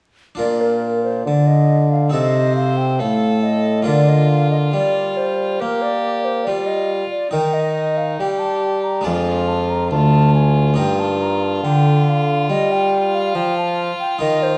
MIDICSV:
0, 0, Header, 1, 5, 480
1, 0, Start_track
1, 0, Tempo, 868307
1, 217, Time_signature, 4, 2, 24, 8
1, 3575, Tempo, 859599
1, 8104, End_track
2, 0, Start_track
2, 0, Title_t, "Flute"
2, 0, Program_c, 0, 73
2, 215, Note_on_c, 0, 74, 62
2, 337, Note_on_c, 0, 70, 59
2, 345, Note_off_c, 0, 74, 0
2, 570, Note_off_c, 0, 70, 0
2, 574, Note_on_c, 0, 72, 56
2, 691, Note_off_c, 0, 72, 0
2, 694, Note_on_c, 0, 74, 64
2, 812, Note_on_c, 0, 75, 59
2, 820, Note_off_c, 0, 74, 0
2, 1053, Note_off_c, 0, 75, 0
2, 1056, Note_on_c, 0, 77, 59
2, 1165, Note_off_c, 0, 77, 0
2, 1168, Note_on_c, 0, 75, 63
2, 1408, Note_off_c, 0, 75, 0
2, 1415, Note_on_c, 0, 77, 62
2, 1533, Note_on_c, 0, 79, 58
2, 1541, Note_off_c, 0, 77, 0
2, 1655, Note_on_c, 0, 77, 60
2, 1663, Note_off_c, 0, 79, 0
2, 1897, Note_on_c, 0, 75, 65
2, 1906, Note_off_c, 0, 77, 0
2, 2133, Note_off_c, 0, 75, 0
2, 2137, Note_on_c, 0, 74, 68
2, 2260, Note_on_c, 0, 75, 61
2, 2268, Note_off_c, 0, 74, 0
2, 2370, Note_on_c, 0, 77, 64
2, 2378, Note_off_c, 0, 75, 0
2, 2490, Note_off_c, 0, 77, 0
2, 2493, Note_on_c, 0, 75, 61
2, 2526, Note_off_c, 0, 75, 0
2, 2616, Note_on_c, 0, 74, 66
2, 2858, Note_on_c, 0, 72, 65
2, 2866, Note_off_c, 0, 74, 0
2, 3099, Note_on_c, 0, 70, 66
2, 3107, Note_off_c, 0, 72, 0
2, 3217, Note_on_c, 0, 74, 68
2, 3225, Note_off_c, 0, 70, 0
2, 3454, Note_on_c, 0, 72, 59
2, 3462, Note_off_c, 0, 74, 0
2, 3565, Note_on_c, 0, 74, 61
2, 3573, Note_off_c, 0, 72, 0
2, 3687, Note_on_c, 0, 75, 62
2, 3695, Note_off_c, 0, 74, 0
2, 3823, Note_off_c, 0, 75, 0
2, 3935, Note_on_c, 0, 74, 59
2, 4046, Note_off_c, 0, 74, 0
2, 4049, Note_on_c, 0, 79, 75
2, 4171, Note_on_c, 0, 75, 68
2, 4180, Note_off_c, 0, 79, 0
2, 4416, Note_on_c, 0, 77, 63
2, 4425, Note_off_c, 0, 75, 0
2, 4531, Note_off_c, 0, 77, 0
2, 4535, Note_on_c, 0, 79, 73
2, 4650, Note_on_c, 0, 81, 67
2, 4658, Note_off_c, 0, 79, 0
2, 4898, Note_on_c, 0, 82, 64
2, 4907, Note_off_c, 0, 81, 0
2, 5016, Note_on_c, 0, 80, 72
2, 5024, Note_off_c, 0, 82, 0
2, 5259, Note_on_c, 0, 81, 73
2, 5267, Note_off_c, 0, 80, 0
2, 5379, Note_on_c, 0, 82, 67
2, 5387, Note_off_c, 0, 81, 0
2, 5492, Note_off_c, 0, 82, 0
2, 5495, Note_on_c, 0, 81, 68
2, 5734, Note_off_c, 0, 81, 0
2, 5741, Note_on_c, 0, 80, 74
2, 5977, Note_off_c, 0, 80, 0
2, 5983, Note_on_c, 0, 79, 80
2, 6105, Note_on_c, 0, 81, 72
2, 6114, Note_off_c, 0, 79, 0
2, 6231, Note_on_c, 0, 82, 70
2, 6239, Note_off_c, 0, 81, 0
2, 6347, Note_on_c, 0, 81, 65
2, 6355, Note_off_c, 0, 82, 0
2, 6466, Note_on_c, 0, 79, 73
2, 6474, Note_off_c, 0, 81, 0
2, 6711, Note_on_c, 0, 77, 75
2, 6719, Note_off_c, 0, 79, 0
2, 6937, Note_off_c, 0, 77, 0
2, 6940, Note_on_c, 0, 75, 80
2, 7064, Note_on_c, 0, 79, 76
2, 7073, Note_off_c, 0, 75, 0
2, 7305, Note_on_c, 0, 77, 65
2, 7314, Note_off_c, 0, 79, 0
2, 7424, Note_on_c, 0, 79, 71
2, 7432, Note_off_c, 0, 77, 0
2, 7542, Note_off_c, 0, 79, 0
2, 7544, Note_on_c, 0, 81, 79
2, 7675, Note_off_c, 0, 81, 0
2, 7781, Note_on_c, 0, 79, 70
2, 7889, Note_off_c, 0, 79, 0
2, 7893, Note_on_c, 0, 75, 81
2, 8020, Note_on_c, 0, 72, 71
2, 8028, Note_off_c, 0, 75, 0
2, 8104, Note_off_c, 0, 72, 0
2, 8104, End_track
3, 0, Start_track
3, 0, Title_t, "Violin"
3, 0, Program_c, 1, 40
3, 1170, Note_on_c, 1, 72, 61
3, 1654, Note_on_c, 1, 69, 55
3, 1662, Note_off_c, 1, 72, 0
3, 2131, Note_off_c, 1, 69, 0
3, 2134, Note_on_c, 1, 65, 55
3, 3094, Note_on_c, 1, 67, 57
3, 3102, Note_off_c, 1, 65, 0
3, 3581, Note_on_c, 1, 65, 58
3, 3590, Note_off_c, 1, 67, 0
3, 4052, Note_off_c, 1, 65, 0
3, 4055, Note_on_c, 1, 63, 50
3, 4542, Note_on_c, 1, 67, 53
3, 4551, Note_off_c, 1, 63, 0
3, 5014, Note_off_c, 1, 67, 0
3, 5017, Note_on_c, 1, 65, 57
3, 5490, Note_off_c, 1, 65, 0
3, 5502, Note_on_c, 1, 65, 66
3, 8104, Note_off_c, 1, 65, 0
3, 8104, End_track
4, 0, Start_track
4, 0, Title_t, "Harpsichord"
4, 0, Program_c, 2, 6
4, 194, Note_on_c, 2, 62, 38
4, 204, Note_on_c, 2, 65, 37
4, 212, Note_on_c, 2, 70, 39
4, 218, Note_on_c, 2, 46, 42
4, 678, Note_off_c, 2, 46, 0
4, 705, Note_on_c, 2, 50, 37
4, 1145, Note_off_c, 2, 62, 0
4, 1150, Note_off_c, 2, 65, 0
4, 1154, Note_off_c, 2, 70, 0
4, 1158, Note_on_c, 2, 60, 34
4, 1159, Note_off_c, 2, 50, 0
4, 1166, Note_on_c, 2, 63, 35
4, 1176, Note_on_c, 2, 69, 38
4, 1184, Note_on_c, 2, 48, 39
4, 1640, Note_off_c, 2, 48, 0
4, 1661, Note_on_c, 2, 45, 40
4, 2108, Note_off_c, 2, 60, 0
4, 2112, Note_off_c, 2, 63, 0
4, 2114, Note_on_c, 2, 58, 37
4, 2117, Note_off_c, 2, 69, 0
4, 2118, Note_off_c, 2, 45, 0
4, 2122, Note_on_c, 2, 65, 38
4, 2129, Note_on_c, 2, 70, 37
4, 2140, Note_on_c, 2, 50, 43
4, 2596, Note_off_c, 2, 50, 0
4, 2616, Note_on_c, 2, 55, 37
4, 3075, Note_off_c, 2, 55, 0
4, 3098, Note_off_c, 2, 58, 0
4, 3105, Note_on_c, 2, 58, 41
4, 3558, Note_off_c, 2, 58, 0
4, 3577, Note_on_c, 2, 55, 43
4, 3882, Note_off_c, 2, 55, 0
4, 4028, Note_off_c, 2, 65, 0
4, 4032, Note_off_c, 2, 70, 0
4, 4045, Note_on_c, 2, 63, 41
4, 4054, Note_on_c, 2, 70, 38
4, 4061, Note_on_c, 2, 51, 43
4, 4519, Note_off_c, 2, 51, 0
4, 4546, Note_on_c, 2, 55, 39
4, 4992, Note_off_c, 2, 63, 0
4, 4995, Note_on_c, 2, 56, 39
4, 4996, Note_off_c, 2, 70, 0
4, 5002, Note_off_c, 2, 55, 0
4, 5004, Note_on_c, 2, 62, 39
4, 5013, Note_on_c, 2, 74, 40
4, 5022, Note_on_c, 2, 41, 44
4, 5480, Note_off_c, 2, 41, 0
4, 5498, Note_on_c, 2, 38, 46
4, 5947, Note_off_c, 2, 56, 0
4, 5951, Note_off_c, 2, 62, 0
4, 5956, Note_off_c, 2, 74, 0
4, 5958, Note_off_c, 2, 38, 0
4, 5960, Note_on_c, 2, 58, 43
4, 5968, Note_on_c, 2, 63, 41
4, 5973, Note_on_c, 2, 70, 41
4, 5981, Note_on_c, 2, 43, 46
4, 6437, Note_off_c, 2, 58, 0
4, 6439, Note_off_c, 2, 43, 0
4, 6468, Note_on_c, 2, 50, 41
4, 6920, Note_off_c, 2, 50, 0
4, 6941, Note_on_c, 2, 55, 47
4, 7397, Note_off_c, 2, 55, 0
4, 7420, Note_on_c, 2, 53, 45
4, 7722, Note_off_c, 2, 53, 0
4, 7868, Note_off_c, 2, 63, 0
4, 7871, Note_off_c, 2, 70, 0
4, 7885, Note_on_c, 2, 63, 44
4, 7893, Note_on_c, 2, 70, 44
4, 7901, Note_on_c, 2, 51, 47
4, 8104, Note_off_c, 2, 51, 0
4, 8104, Note_off_c, 2, 63, 0
4, 8104, Note_off_c, 2, 70, 0
4, 8104, End_track
5, 0, Start_track
5, 0, Title_t, "Bassoon"
5, 0, Program_c, 3, 70
5, 214, Note_on_c, 3, 46, 51
5, 676, Note_off_c, 3, 46, 0
5, 696, Note_on_c, 3, 50, 49
5, 1167, Note_off_c, 3, 50, 0
5, 1175, Note_on_c, 3, 48, 53
5, 1662, Note_on_c, 3, 45, 46
5, 1671, Note_off_c, 3, 48, 0
5, 2138, Note_off_c, 3, 45, 0
5, 2141, Note_on_c, 3, 50, 48
5, 2610, Note_off_c, 3, 50, 0
5, 2615, Note_on_c, 3, 55, 47
5, 3087, Note_off_c, 3, 55, 0
5, 3102, Note_on_c, 3, 58, 50
5, 3569, Note_off_c, 3, 58, 0
5, 3580, Note_on_c, 3, 55, 50
5, 3899, Note_off_c, 3, 55, 0
5, 4058, Note_on_c, 3, 51, 57
5, 4518, Note_off_c, 3, 51, 0
5, 4539, Note_on_c, 3, 55, 52
5, 5011, Note_off_c, 3, 55, 0
5, 5021, Note_on_c, 3, 41, 55
5, 5492, Note_off_c, 3, 41, 0
5, 5502, Note_on_c, 3, 38, 54
5, 5981, Note_on_c, 3, 43, 52
5, 5990, Note_off_c, 3, 38, 0
5, 6453, Note_off_c, 3, 43, 0
5, 6457, Note_on_c, 3, 50, 57
5, 6927, Note_off_c, 3, 50, 0
5, 6940, Note_on_c, 3, 55, 59
5, 7410, Note_off_c, 3, 55, 0
5, 7417, Note_on_c, 3, 53, 57
5, 7737, Note_off_c, 3, 53, 0
5, 7902, Note_on_c, 3, 51, 62
5, 8104, Note_off_c, 3, 51, 0
5, 8104, End_track
0, 0, End_of_file